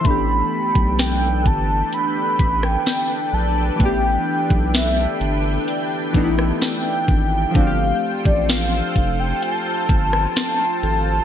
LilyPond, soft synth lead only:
\new Staff \with { instrumentName = "Soft synth lead" } { \time 4/4 \key g \lydian \tempo 4 = 64 b''4 g''8 a''8 b''8. g''8. a''8 | g''4 e''4 r4 g''4 | f''8. d''16 f''8. g''16 a''2 | }